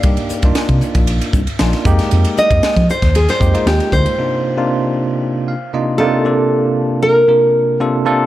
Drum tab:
RD |xx-xxx-xxx-xxx-x|xx-xxx-xxx-xxx-x|----------------|----------------|
HH |--p---p---p---p-|--p---p---p---p-|----------------|----------------|
SD |----o-------oo-o|----oo-o-o--oo--|----------------|----------------|
BD |o--o-o-o--o---o-|---o-o-o--o---o-|----------------|----------------|